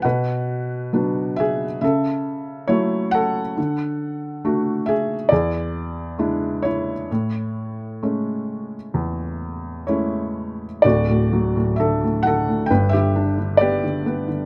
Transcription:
<<
  \new Staff \with { instrumentName = "Felt piano" } { \time 4/4 \key a \major \tempo 4 = 67 <b' fis''>4. <gis' e''>8 <a' e''>4 cis''8 <a' fis''>8~ | <a' fis''>4. <gis' e''>8 <gis' d''>4. <e' cis''>8~ | <e' cis''>2. <e' cis''>4 | \key d \major <fis' d''>4 <a' e''>8 <a' fis''>8 <b' g''>16 <g' e''>8. <g' d''>4 | }
  \new Staff \with { instrumentName = "Felt piano" } { \clef bass \time 4/4 \key a \major b,4 <fis b d'>4 cis4 <fis a e'>4 | d4 <a d' fis'>4 e,4 <gis d' e'>4 | a,4 <gis a cis'>4 e,4 <gis a cis'>4 | \key d \major <d,, d,>16 a,16 fis16 a,16 d16 a,16 d16 a,16 <g,, g,>16 d16 d'16 d16 b16 d16 b16 d16 | }
>>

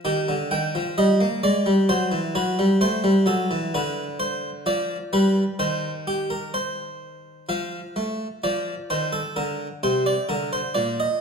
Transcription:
<<
  \new Staff \with { instrumentName = "Harpsichord" } { \time 4/4 \key c \phrygian \tempo 4 = 64 g'8 g''8 ees''8 d''8 c''8 b'8 c''8 a'8 | b'8 c''8 d''8 b'8 c''8 g'16 bes'16 c''4 | f''4 d''8 c''16 a'16 bes'8 c''16 d''16 bes'16 c''16 d''16 ees''16 | }
  \new Staff \with { instrumentName = "Harpsichord" } { \clef bass \time 4/4 \key c \phrygian ees16 d16 ees16 f16 g16 bes16 aes16 g16 fis16 e16 fis16 g16 a16 g16 fis16 e16 | d4 f8 g8 ees2 | f8 a8 f8 ees8 d8 c8 d8 bes,8 | }
>>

